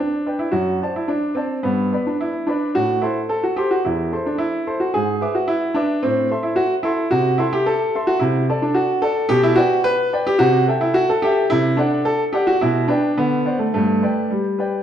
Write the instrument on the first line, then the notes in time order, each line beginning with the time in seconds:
grand piano
Already playing: D4 B4 D5 G5
0.26 B4 D5 G5
0.39 E4
0.52 F#2 F#4
0.82 C5 D5 A5
0.96 E4
1.08 D4
1.35 C4 C5 D5 A5
1.63 G2 B3
1.93 B4 D5 B5
2.07 D4
2.20 E4
2.47 D4 B4 D5 B5
2.75 A2 F#4
3.02 E4 A4 C5 C6
3.29 A4
3.43 F#4
3.56 G4 A4 C5 C6
3.71 F#4
3.85 E2 E4
4.12 A4 C5 C6
4.26 D4
4.38 E4
4.67 A4 C5 C6
4.80 F#4
4.94 G#2 G#4
5.21 B4 E5 D6
5.35 F#4
5.48 E4
5.74 D4 B4 E5 D6
6.03 A2 C4
6.31 A4 E5 C6
6.43 E4
6.56 F#4
6.83 E4 A4 E5 C6
7.11 C3 F#4
7.38 E4 A4 E5 C6
7.53 G4
7.66 A4
7.95 A4 E5 C6
8.07 F#4
8.19 C3 E4
8.50 A4 D5 A5
8.62 D4
8.74 F#4
9.02 A4 D5 A5
9.29 B2 G4
9.43 E4
9.55 F#4 B4 D5 G5
9.84 B4
10.13 B4 D5 G5
10.27 G4
10.39 C3 F#4
10.68 A4 E5 G5
10.81 E4
10.94 F#4
11.09 A4
11.22 G4 A4 E5 G5
11.50 C3 E4
11.77 D4 A4 D5 F#5
12.05 A4
12.33 G4 A4 D5 F#5
12.47 F#4
12.61 B2 E4
12.88 D4 B4 D5 G5
13.18 D3 B3
13.45 C5 D5 F#5
13.59 A3
13.74 G2 A3
14.02 B4 D5 G5
14.30 G3
14.59 B4 D5 G5